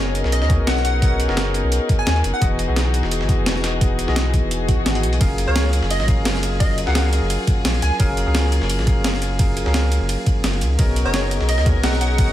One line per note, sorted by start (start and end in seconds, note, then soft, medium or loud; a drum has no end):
0.00 0.23 F#1 loud
0.00 0.49 B3 loud
0.00 2.39 C#4 medium
0.00 5.17 D#4 medium
0.00 0.49 F#4 medium
0.00 0.50 G#4 medium
0.00 2.38 G#4 medium
0.00 0.50 A#4 medium
0.00 2.39 A#4 medium
0.00 0.10 C#5 loud
0.00 0.51 C#5 medium
0.00 0.51 D#5 loud
0.15 closed hi-hat medium
0.24 0.43 B1 loud
0.24 snare soft
0.32 0.39 D#5 medium
0.32 closed hi-hat medium
0.42 0.60 D#2 medium
0.42 0.47 D#5 medium
0.42 snare soft
0.49 1.00 B3 medium
0.49 1.00 F#4 medium
0.49 1.00 G#4 medium
0.49 1.00 A#4 medium
0.49 1.01 C#5 medium
0.49 1.01 D#5 medium
0.49 kick loud
0.49 closed hi-hat medium
0.59 1.27 B1 medium
0.67 0.83 F#5 loud
0.67 snare loud
0.67 closed hi-hat medium
0.77 snare soft
0.85 1.01 F#5 medium
0.85 closed hi-hat medium
1.02 1.15 B3 medium
1.02 1.15 F#4 medium
1.02 1.15 G#4 medium
1.02 1.15 A#4 medium
1.02 1.15 C#5 medium
1.02 1.15 D#5 medium
1.02 1.23 F#5 medium
1.02 kick loud
1.02 closed hi-hat medium
1.20 closed hi-hat medium
1.27 1.62 F#1 loud
1.27 2.39 B3 medium
1.27 2.39 F#4 medium
1.27 2.40 G#4 medium
1.27 2.40 A#4 medium
1.27 2.40 C#5 medium
1.27 2.40 D#5 loud
1.27 snare medium
1.37 snare loud
1.37 closed hi-hat medium
1.54 closed hi-hat medium
1.64 1.79 B1 loud
1.72 closed hi-hat medium
1.89 kick loud
1.89 closed hi-hat medium
1.99 2.19 G#5 medium
2.07 2.23 D#2 medium
2.07 snare loud
2.07 closed hi-hat medium
2.16 closed hi-hat soft
2.24 2.33 F#1 loud
2.24 closed hi-hat medium
2.34 2.45 F#5 medium
2.41 2.67 E1 loud
2.41 2.66 E3 loud
2.41 2.66 B3 medium
2.41 5.18 F#4 medium
2.41 2.66 F#4 medium
2.41 10.75 G#4 medium
2.41 2.66 G#4 medium
2.41 2.66 D#5 loud
2.41 kick loud
2.41 closed hi-hat medium
2.59 closed hi-hat medium
2.67 3.02 B1 loud
2.67 3.26 E3 medium
2.67 3.27 B3 medium
2.67 3.27 F#4 medium
2.67 3.27 G#4 medium
2.67 3.28 D#5 medium
2.76 snare loud
2.76 closed hi-hat medium
2.94 closed hi-hat medium
3.03 3.22 E1 loud
3.03 snare soft
3.11 closed hi-hat medium
3.21 3.40 G#1 medium
3.21 snare soft
3.27 3.79 E3 medium
3.27 3.79 B3 medium
3.27 3.79 F#4 medium
3.27 3.79 G#4 medium
3.27 3.80 D#5 medium
3.27 kick loud
3.27 closed hi-hat medium
3.38 4.06 E1 medium
3.46 snare loud
3.46 closed hi-hat medium
3.56 snare soft
3.64 snare loud
3.64 closed hi-hat medium
3.81 3.94 E3 medium
3.81 3.94 B3 medium
3.81 3.94 F#4 medium
3.81 3.94 G#4 medium
3.81 3.94 D#5 medium
3.81 kick loud
3.81 closed hi-hat loud
3.99 closed hi-hat medium
4.07 4.41 B1 loud
4.07 4.93 E3 medium
4.07 4.93 B3 medium
4.07 4.93 F#4 medium
4.07 4.94 G#4 medium
4.07 4.94 D#5 loud
4.07 snare medium
4.16 snare loud
4.16 closed hi-hat medium
4.34 kick medium
4.34 closed hi-hat medium
4.43 4.70 E1 loud
4.51 closed hi-hat medium
4.51 swell medium
4.68 4.77 B1 loud
4.68 kick loud
4.68 closed hi-hat medium
4.86 5.05 G#1 loud
4.86 snare loud
4.86 closed hi-hat medium
4.95 5.18 E3 medium
4.95 5.19 B3 medium
4.95 5.19 F#4 medium
4.95 5.19 G#4 medium
4.95 5.19 D#5 medium
4.95 closed hi-hat medium
5.03 5.19 B1 loud
5.03 closed hi-hat medium
5.13 closed hi-hat medium
5.20 5.46 F#1 loud
5.20 5.45 F#3 loud
5.20 10.75 A#3 medium
5.20 5.45 C#4 medium
5.20 10.75 F4 medium
5.20 5.45 G#4 medium
5.20 5.45 A#4 medium
5.20 5.46 F5 loud
5.20 kick loud
5.20 closed hi-hat loud
5.20 closed hi-hat medium
5.20 ride medium
5.38 closed hi-hat medium
5.46 5.81 C#2 loud
5.46 6.05 F#3 medium
5.46 6.06 C#4 medium
5.46 6.06 G#4 medium
5.46 6.06 A#4 medium
5.46 5.68 C#5 medium
5.46 6.07 F5 medium
5.56 snare loud
5.56 closed hi-hat loud
5.56 closed hi-hat medium
5.56 ride medium
5.73 closed hi-hat medium
5.82 6.01 F#1 loud
5.82 snare soft
5.91 5.97 D#5 medium
5.91 closed hi-hat loud
5.91 closed hi-hat medium
5.91 ride medium
6.00 6.19 A#1 medium
6.00 6.05 D#5 medium
6.00 snare soft
6.07 6.58 F#3 medium
6.07 6.58 C#4 medium
6.07 6.58 G#4 medium
6.07 6.59 A#4 medium
6.07 6.59 F5 medium
6.07 kick loud
6.07 closed hi-hat medium
6.17 6.86 F#1 medium
6.25 snare loud
6.25 closed hi-hat medium
6.25 ride medium
6.35 snare soft
6.43 closed hi-hat medium
6.60 6.73 F#3 medium
6.60 6.73 C#4 medium
6.60 6.73 G#4 medium
6.60 6.73 A#4 medium
6.60 6.81 D#5 loud
6.60 6.73 F5 medium
6.60 kick loud
6.60 closed hi-hat loud
6.60 closed hi-hat medium
6.60 ride medium
6.78 closed hi-hat medium
6.86 7.20 C#2 loud
6.86 7.97 F#3 medium
6.86 7.98 C#4 medium
6.86 7.98 G#4 medium
6.86 7.98 A#4 medium
6.86 7.99 F5 loud
6.86 7.08 F#5 medium
6.86 snare medium
6.95 snare loud
6.95 closed hi-hat medium
6.95 closed hi-hat loud
6.95 ride medium
7.13 closed hi-hat medium
7.22 7.38 F#1 loud
7.30 closed hi-hat loud
7.30 closed hi-hat medium
7.30 ride medium
7.47 kick loud
7.47 closed hi-hat medium
7.65 7.81 A#1 medium
7.65 snare loud
7.65 closed hi-hat medium
7.65 closed hi-hat loud
7.65 ride medium
7.74 closed hi-hat soft
7.82 7.91 C#2 loud
7.82 8.09 G#5 medium
7.82 closed hi-hat medium
7.99 8.25 F#1 loud
7.99 8.24 F#3 loud
7.99 8.24 C#4 medium
7.99 8.24 G#4 medium
7.99 8.24 A#4 medium
7.99 8.25 F5 loud
7.99 kick loud
7.99 closed hi-hat loud
7.99 closed hi-hat medium
7.99 ride medium
8.17 closed hi-hat medium
8.25 8.60 C#2 loud
8.25 8.85 F#3 medium
8.25 8.85 C#4 medium
8.25 8.85 G#4 medium
8.25 8.85 A#4 medium
8.25 8.86 F5 medium
8.35 snare loud
8.35 closed hi-hat loud
8.35 closed hi-hat medium
8.35 ride medium
8.52 closed hi-hat medium
8.61 8.80 F#1 loud
8.61 snare soft
8.70 closed hi-hat loud
8.70 closed hi-hat medium
8.70 ride medium
8.79 8.98 A#1 medium
8.79 snare soft
8.86 9.37 F#3 medium
8.86 9.37 C#4 medium
8.86 9.37 G#4 medium
8.86 9.38 A#4 medium
8.86 9.38 F5 medium
8.86 kick loud
8.86 closed hi-hat medium
8.96 9.65 F#1 medium
9.04 snare loud
9.04 closed hi-hat medium
9.04 ride medium
9.14 snare soft
9.22 closed hi-hat medium
9.39 9.52 F#3 medium
9.39 9.52 C#4 medium
9.39 9.52 G#4 medium
9.39 9.52 A#4 medium
9.39 9.52 F5 medium
9.39 kick loud
9.39 closed hi-hat loud
9.39 ride medium
9.57 closed hi-hat medium
9.65 9.99 C#2 loud
9.65 10.76 F#3 medium
9.65 10.77 C#4 medium
9.65 10.77 G#4 medium
9.65 10.77 A#4 medium
9.65 10.78 F5 loud
9.65 snare medium
9.74 snare loud
9.74 closed hi-hat medium
9.74 ride medium
9.92 closed hi-hat medium
10.01 10.17 F#1 loud
10.09 closed hi-hat medium
10.09 ride medium
10.26 kick loud
10.26 closed hi-hat medium
10.44 10.63 F#1 loud
10.44 snare loud
10.44 closed hi-hat medium
10.44 ride medium
10.53 closed hi-hat soft
10.61 10.77 C#2 loud
10.61 closed hi-hat medium
10.78 11.04 B1 loud
10.78 11.03 B3 loud
10.78 12.33 C#4 medium
10.78 12.33 D#4 medium
10.78 11.03 F#4 medium
10.78 11.03 G#4 medium
10.78 12.33 G#4 medium
10.78 12.33 A#4 medium
10.78 11.03 A#4 medium
10.78 11.04 C#5 medium
10.78 11.04 D#5 loud
10.78 kick loud
10.78 closed hi-hat medium
10.78 ride medium
10.96 closed hi-hat medium
11.04 11.39 F#1 loud
11.04 11.64 B3 medium
11.04 11.64 F#4 medium
11.04 11.64 G#4 medium
11.04 11.64 A#4 medium
11.04 11.26 C#5 loud
11.04 11.65 C#5 medium
11.04 11.65 D#5 medium
11.14 snare loud
11.14 closed hi-hat medium
11.14 ride medium
11.31 closed hi-hat medium
11.40 11.59 B1 loud
11.40 snare soft
11.49 11.55 D#5 medium
11.49 closed hi-hat medium
11.49 ride medium
11.58 11.77 D#2 medium
11.58 11.63 D#5 medium
11.58 snare soft
11.65 12.16 B3 medium
11.65 12.16 F#4 medium
11.65 12.16 G#4 medium
11.65 12.17 A#4 medium
11.65 12.17 C#5 medium
11.65 12.17 D#5 medium
11.65 kick loud
11.65 closed hi-hat medium
11.75 12.33 B1 medium
11.84 11.99 F#5 loud
11.84 snare loud
11.84 closed hi-hat medium
11.84 ride medium
11.93 snare soft
12.01 12.17 F#5 medium
12.01 closed hi-hat medium
12.18 12.31 B3 medium
12.18 12.31 F#4 medium
12.18 12.31 G#4 medium
12.18 12.31 A#4 medium
12.18 12.31 C#5 medium
12.18 12.32 D#5 medium
12.18 12.33 F#5 loud
12.18 kick loud
12.18 closed hi-hat loud
12.18 closed hi-hat medium
12.18 ride medium